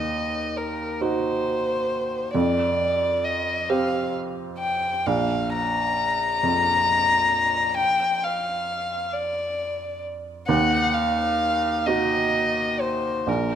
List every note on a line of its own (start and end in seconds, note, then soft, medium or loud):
0.00 2.30 D#2 soft
0.00 0.58 D#5 medium
0.57 1.03 A#4 medium
1.01 2.31 D#4 soft
1.01 2.31 F#4 soft
1.01 2.34 C5 medium
2.34 5.02 F2 soft
2.34 3.26 D5 medium
3.24 3.71 D#5 medium
3.69 5.02 C4 soft
3.69 5.03 G4 soft
3.69 4.14 F5 medium
4.59 5.08 G5 medium
5.06 7.74 A#1 soft
5.06 5.52 F5 medium
5.52 7.74 A#5 medium
6.43 10.49 F2 soft
7.77 8.24 G5 medium
8.23 9.14 F5 medium
9.12 10.03 D5 medium
10.48 13.23 D#2 medium
10.48 10.95 F#5 medium
10.94 11.88 F5 medium
11.86 13.23 D#4 soft
11.86 13.24 F#4 soft
11.86 12.82 D#5 medium
12.80 13.30 C5 medium
13.27 13.55 A#1 soft
13.27 13.55 A#4 soft